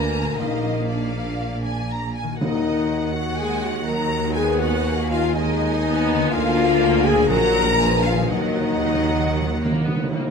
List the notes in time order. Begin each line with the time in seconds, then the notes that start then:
Already playing: D2 D3 A#3 F4 G#4 A#4 G#5 A#5
0.22 A#2
0.26 A#3
0.31 F4
0.35 A#1 A#4 D#5
0.39 A#1 A#2 A#3 D#4 F5
0.90 D4 D5 F5
1.65 G#5
1.91 A#5
2.16 G#5
2.23 D#3
2.28 A#3
2.32 F#4
2.37 D#2 D#4 A#4 D#5 F#5
2.41 D#2 D#3
3.14 F#4 F#5
3.38 G#3 G#4 G#5
3.62 F#4 F#5
3.87 F#3 A#4 A#5
4.19 D#3
4.23 G#3
4.28 F4
4.32 G#4 B4 G#5
4.38 B3 G#5
4.59 F#4 F#5
4.87 A#3
5.09 F4 F5
5.34 G#3 D#4 D#5
5.85 B3
6.14 D3
6.19 G#3
6.23 F4
6.28 D2 F4 A#4
6.32 D2 D3 A#3 F5
7.04 G#4 G#5
7.12 A#2
7.17 F#3
7.21 D#4
7.25 A#4 F#5 A#5
7.30 A#1 A#2 F#3 A#4
7.61 A#2
7.66 G#3
7.71 D4
7.75 B4
7.79 F3 G#5
8.04 F4 F5
8.13 D#3
8.18 F#3
8.22 D#4
8.27 D#3 F#3 A#4
8.31 D#2 D#3 D#4 D#5 F#5
8.38 D#3
8.47 D#3
8.55 D#3
8.62 D#3
8.70 D#3
8.78 D#3 F#3
8.87 D#3
8.95 D#3
9.02 D#3
9.11 D#3
9.18 D#3
9.25 D#3
9.34 D#3
9.41 D#3
9.50 D#3
9.58 D#3 A#3
9.65 D#3
9.72 D#3
9.80 D#3
9.86 D#3 B3
9.96 D#3
10.04 D#3
10.12 D#3 A#3
10.20 D#3
10.27 D#3